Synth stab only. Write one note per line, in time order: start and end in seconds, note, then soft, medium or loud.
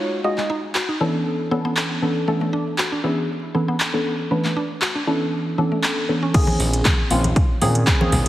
0.00 0.21 G#3 medium
0.00 0.21 D#4 medium
0.00 0.21 F4 medium
0.00 0.21 F#4 medium
0.00 0.21 C#5 medium
0.24 0.40 G#3 medium
0.24 0.40 D#4 medium
0.24 0.40 F4 medium
0.24 0.40 F#4 medium
0.24 0.40 D#5 loud
1.00 1.49 E3 loud
1.00 1.48 B3 medium
1.00 1.49 C#4 medium
1.00 1.49 D4 medium
1.00 1.49 A4 loud
1.51 1.99 E3 medium
1.51 1.99 B3 medium
1.51 1.99 C#4 medium
1.51 1.99 D4 medium
1.51 1.99 A4 loud
2.02 2.25 E3 medium
2.02 2.25 B3 medium
2.02 2.25 C#4 medium
2.02 2.25 D4 medium
2.02 2.25 A4 medium
2.28 3.01 E3 loud
2.28 3.01 B3 medium
2.28 3.01 C#4 medium
2.28 3.01 D4 medium
2.28 3.01 A4 loud
3.04 3.29 E3 medium
3.04 3.29 B3 medium
3.04 3.29 C#4 medium
3.04 3.29 D4 medium
3.04 3.29 G#4 medium
3.55 3.90 E3 medium
3.55 3.90 B3 medium
3.55 3.90 C#4 medium
3.55 3.90 D4 medium
3.55 3.90 A4 loud
3.94 4.28 E3 medium
3.94 4.28 B3 medium
3.94 4.28 C#4 medium
3.94 4.28 D4 medium
3.94 4.28 A4 medium
4.31 4.47 E3 medium
4.31 4.47 B3 medium
4.31 4.47 C#4 medium
4.31 4.47 D4 medium
4.31 4.47 B4 loud
5.07 5.55 E3 medium
5.07 5.55 B3 medium
5.07 5.55 C#4 medium
5.07 5.55 D4 medium
5.07 5.55 A4 loud
5.58 6.06 E3 medium
5.58 6.06 B3 medium
5.58 6.06 C#4 medium
5.58 6.06 D4 medium
5.58 6.06 A4 loud
6.09 6.31 E3 medium
6.09 6.32 B3 medium
6.09 6.32 C#4 medium
6.09 6.32 D4 medium
6.09 6.32 A4 medium
6.34 7.08 D#3 loud
6.34 7.08 A#3 medium
6.34 7.08 C4 medium
6.34 7.08 C#4 loud
6.34 7.08 G#4 loud
7.11 7.35 D#3 medium
7.11 7.35 A#3 medium
7.11 7.35 C4 medium
7.11 7.35 C#4 medium
7.11 7.35 F4 medium
7.61 7.97 D#3 medium
7.61 7.97 A#3 medium
7.61 7.97 C4 medium
7.61 7.97 C#4 medium
7.61 7.97 G#4 loud
8.01 8.28 D#3 medium
8.01 8.28 A#3 medium
8.01 8.28 C4 medium
8.01 8.28 C#4 medium
8.01 8.28 G#4 medium